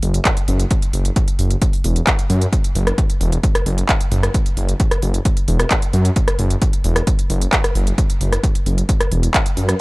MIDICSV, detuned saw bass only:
0, 0, Header, 1, 2, 480
1, 0, Start_track
1, 0, Tempo, 454545
1, 748, Time_signature, 4, 2, 24, 8
1, 10358, End_track
2, 0, Start_track
2, 0, Title_t, "Detuned saw bass"
2, 0, Program_c, 0, 39
2, 28, Note_on_c, 0, 30, 82
2, 205, Note_off_c, 0, 30, 0
2, 508, Note_on_c, 0, 30, 105
2, 686, Note_off_c, 0, 30, 0
2, 987, Note_on_c, 0, 30, 82
2, 1165, Note_off_c, 0, 30, 0
2, 1468, Note_on_c, 0, 30, 85
2, 1645, Note_off_c, 0, 30, 0
2, 1947, Note_on_c, 0, 28, 97
2, 2125, Note_off_c, 0, 28, 0
2, 2426, Note_on_c, 0, 42, 95
2, 2605, Note_off_c, 0, 42, 0
2, 2907, Note_on_c, 0, 30, 103
2, 3085, Note_off_c, 0, 30, 0
2, 3386, Note_on_c, 0, 28, 80
2, 3565, Note_off_c, 0, 28, 0
2, 3866, Note_on_c, 0, 30, 82
2, 4045, Note_off_c, 0, 30, 0
2, 4346, Note_on_c, 0, 30, 101
2, 4525, Note_off_c, 0, 30, 0
2, 4827, Note_on_c, 0, 30, 82
2, 5005, Note_off_c, 0, 30, 0
2, 5307, Note_on_c, 0, 30, 81
2, 5485, Note_off_c, 0, 30, 0
2, 5787, Note_on_c, 0, 28, 96
2, 5965, Note_off_c, 0, 28, 0
2, 6267, Note_on_c, 0, 42, 95
2, 6445, Note_off_c, 0, 42, 0
2, 6746, Note_on_c, 0, 30, 105
2, 6925, Note_off_c, 0, 30, 0
2, 7228, Note_on_c, 0, 28, 83
2, 7405, Note_off_c, 0, 28, 0
2, 7707, Note_on_c, 0, 30, 86
2, 7885, Note_off_c, 0, 30, 0
2, 8187, Note_on_c, 0, 30, 106
2, 8365, Note_off_c, 0, 30, 0
2, 8667, Note_on_c, 0, 30, 85
2, 8845, Note_off_c, 0, 30, 0
2, 9146, Note_on_c, 0, 30, 84
2, 9325, Note_off_c, 0, 30, 0
2, 9627, Note_on_c, 0, 28, 93
2, 9805, Note_off_c, 0, 28, 0
2, 10107, Note_on_c, 0, 42, 96
2, 10285, Note_off_c, 0, 42, 0
2, 10358, End_track
0, 0, End_of_file